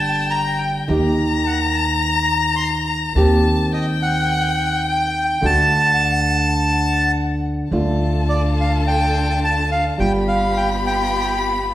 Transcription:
Already playing: upright bass G1, nylon-string guitar D3 G3 A#3 D4 A4, violin G5, bandoneon A5
0.31 bandoneon A#5
0.58 bandoneon G5
0.88 upright bass D#2, nylon-string guitar D#3 A#3 D#4 G4, violin A#5
1.47 bandoneon F#5
1.73 bandoneon A5
2.01 bandoneon A#5
2.56 bandoneon C6
2.86 bandoneon A#5
3.15 upright bass D#2, nylon-string guitar D#3 A#3 C4 G4, violin A5
3.72 bandoneon D#5, violin G5
4.02 bandoneon F#5
4.89 bandoneon G5
5.41 upright bass D2, nylon-string guitar D3 A3 D4 F#4, violin F#5
5.46 bandoneon A5
6.58 violin F#5
7.71 upright bass D2, nylon-string guitar D3 A3 D4 F4, string section D4 F4 A4, violin A5
8.29 bandoneon D5
8.61 bandoneon F5
8.87 bandoneon G5
9.44 bandoneon A5
9.72 bandoneon F5
9.98 upright bass G1, nylon-string guitar G3 B3 F4, string section B3 F4 G4, bandoneon G5, violin B5
10.28 bandoneon F5
10.57 bandoneon G5
10.87 bandoneon G5

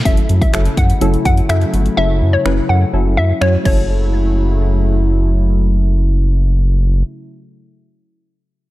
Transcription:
0.05 analog synth bass F#1, analog synth pad C#3 F#3 A3 E4, synth stab F#3 C#4 E4 A4, synth pluck E5, kick, closed hi-hat
0.17 closed hi-hat
0.29 analog synth bass F#2, closed hi-hat
0.42 synth pluck E5, kick, closed hi-hat
0.53 analog synth bass F#1, synth stab F#3 C#4 E4 A4, finger snap, closed hi-hat
0.65 closed hi-hat
0.77 analog synth bass F#2, synth pluck F#5, kick, closed hi-hat
0.90 closed hi-hat
1.01 analog synth bass F#1, synth stab F#3 C#4 E4 A4, closed hi-hat
1.14 closed hi-hat
1.25 analog synth bass F#2, synth pluck F#5, kick, closed hi-hat
1.37 closed hi-hat
1.49 analog synth bass F#2, synth stab F#3 C#4 E4 A4, synth pluck E5, finger snap, closed hi-hat
1.61 closed hi-hat
1.73 analog synth bass G1, closed hi-hat
1.86 closed hi-hat
1.97 analog synth bass F#1, synth stab F#3 C#4 E4 A4, synth pluck E5
2.21 analog synth bass F#2
2.33 synth pluck C#5
2.45 analog synth bass F#1, synth stab F#3 C#4 E4 B4, finger snap
2.69 analog synth bass F#2, synth pluck F#5
2.93 analog synth bass F#1, synth stab F#3 C#4 E4 A4
3.17 analog synth bass F#2, synth pluck E5
3.41 analog synth bass F#2, synth stab F#3 C#4 E4 F#4, synth pluck C#5, finger snap
3.64 analog synth bass F#1, analog synth pad C#3 F#3 A3 E4, synth stab F#3 C#4 E4 A4, synth pluck C#5, kick, crash

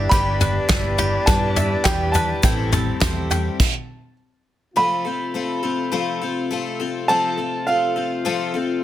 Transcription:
Already playing: felt piano G1 G2 G3 B3 E4 B4 E5, brass ensemble E3 G3 B3 G4, cello D4, twelve-string acoustic guitar E4 G4 B4, five-string banjo G4
0.09 fingered electric bass G1, twelve-string acoustic guitar G3 E4 G4 B4, five-string banjo G4, upright piano B5, kick, floor tom, shaker
0.41 twelve-string acoustic guitar E4 G4 B4, five-string banjo B4, floor tom, shaker
0.69 fingered electric bass G1, twelve-string acoustic guitar G3 E4 G4 B4, felt piano G3 B3 E4 B4 E5, five-string banjo E5, kick, snare, clap, floor tom, shaker
0.98 twelve-string acoustic guitar E4 G4 B4, five-string banjo G4, floor tom, shaker
1.26 fingered electric bass G2, twelve-string acoustic guitar G3 E4 G4 B4, felt piano G3 B3 E4 B4 E5, five-string banjo B4, upright piano A5, kick, floor tom, shaker
1.56 twelve-string acoustic guitar E4 G4 B4, five-string banjo E5, floor tom, shaker
1.84 fingered electric bass E2, felt piano G3 B3 E4 B4 D5, twelve-string acoustic guitar G3 G4 B4, five-string banjo G4, upright piano G5, kick, snare, clap, floor tom, shaker
2.12 twelve-string acoustic guitar E4 G4 B4, five-string banjo B4, upright piano A5, floor tom, shaker
2.43 felt piano A1 A2 G3 C4 E4 A4 E5, fingered electric bass A1, twelve-string acoustic guitar A2 E3 G3 C4 E4 A4, brass ensemble A3 C4, cello C4, five-string banjo G5, kick, floor tom, shaker
2.72 twelve-string acoustic guitar G3 C4 E4 A4, five-string banjo A4, floor tom, shaker
3.00 fingered electric bass E2, felt piano G3 C4 E4 A4 E5, twelve-string acoustic guitar G3 C4 E4 A4, five-string banjo C5, kick, snare, clap, floor tom, shaker
3.30 twelve-string acoustic guitar G3 C4 E4 A4, five-string banjo G5, floor tom, shaker
3.59 kick, crash
4.75 brass ensemble C3 F3 A3 F4, twelve-string acoustic guitar F3 A3 C4 F4 A4, upright piano B5
5.05 twelve-string acoustic guitar C4 F4 A4
5.34 twelve-string acoustic guitar A3 C4 F4 A4
5.63 twelve-string acoustic guitar C4 F4 A4
5.92 twelve-string acoustic guitar F3 A3 C4 F4 A4
6.21 twelve-string acoustic guitar C4 F4 A4
6.51 twelve-string acoustic guitar A3 C4 F4 A4
6.80 twelve-string acoustic guitar C4 F4 A4
7.08 twelve-string acoustic guitar F3 A3 C4 F4 A4, upright piano A5
7.38 twelve-string acoustic guitar C4 F4 A4
7.67 twelve-string acoustic guitar A3 C4 F4 A4, upright piano F5
7.96 twelve-string acoustic guitar C4 F4 A4
8.25 twelve-string acoustic guitar F3 A3 C4 F4 A4
8.54 twelve-string acoustic guitar C4 F4 A4

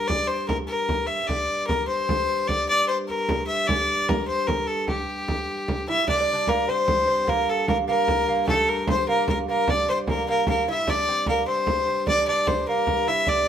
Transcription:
Already playing: viola da gamba G2
0.08 fiddle D5, frame drum
0.27 fiddle C5
0.48 fiddle A#4, frame drum
0.67 fiddle A#4
0.89 frame drum
1.07 fiddle E5, frame drum
1.27 viola da gamba G2, fiddle D5, frame drum
1.67 fiddle A#4, frame drum
1.88 fiddle C5, frame drum
2.09 frame drum
2.48 fiddle D5, frame drum
2.69 fiddle D5, frame drum
2.88 fiddle C5
3.08 fiddle A#4, frame drum
3.29 frame drum
3.47 fiddle E5
3.67 fiddle D5, frame drum
3.89 frame drum
4.08 fiddle A#4, frame drum
4.28 fiddle C5, frame drum
4.47 fiddle A#4, frame drum
4.67 fiddle A4
4.88 fiddle G4, frame drum
5.28 frame drum
5.49 frame drum
5.68 frame drum
5.88 lute E4, fiddle E5
6.08 viola da gamba G2, lute D4, fiddle D5, frame drum
6.21 lute D4
6.28 frame drum
6.33 lute D4
6.47 lute A#3, fiddle A#4, frame drum
6.68 lute C4, fiddle C5
6.88 frame drum
7.07 lute C4
7.27 lute A#3, fiddle A#4, frame drum
7.48 fiddle A4, frame drum
7.67 lute A#3, fiddle A#4, frame drum
7.88 lute A#3, fiddle A#4, frame drum
8.08 frame drum
8.28 lute A#3
8.48 lute A3, fiddle A4, frame drum
8.68 fiddle A#4, frame drum
8.87 lute C4, fiddle C5, frame drum
9.08 lute A#3, fiddle A#4, frame drum
9.28 fiddle A#4, frame drum
9.48 lute A#3, fiddle A#4
9.68 lute D4, fiddle D5, frame drum
9.88 lute C4, fiddle C5, frame drum
10.07 lute A#3, fiddle A#4, frame drum
10.27 lute A#3, fiddle A#4, frame drum
10.47 lute A#3, fiddle A#4, frame drum
10.67 lute E4, fiddle E5, frame drum
10.87 viola da gamba G2, lute D4, fiddle D5, frame drum
11.08 lute C4
11.26 lute A#3, fiddle A#4, frame drum
11.47 lute C4, fiddle C5, frame drum
11.67 frame drum
11.88 lute C4
12.07 lute D4, fiddle D5, frame drum
12.27 lute D4, fiddle D5, frame drum
12.47 fiddle C5, frame drum
12.68 lute A#3, fiddle A#4, frame drum
12.87 frame drum
13.07 lute E4, fiddle E5
13.27 lute D4, fiddle D5, frame drum

